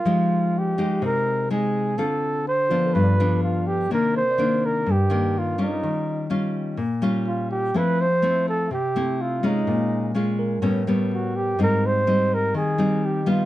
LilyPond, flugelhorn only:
\new Staff \with { instrumentName = "Flugelhorn" } { \time 4/4 \key c \minor \tempo 4 = 125 f'4 g'4 bes'4 aes'4 | a'4 c''4 b'4 f'8 g'8 | bes'8 c''4 bes'8 g'4 f'8 ees'8~ | ees'4 r2 f'8 g'8 |
b'8 c''4 a'8 g'4 f'8 ees'8~ | ees'4 r2 fis'8 g'8 | bes'8 c''4 bes'8 aes'4 g'8 f'8 | }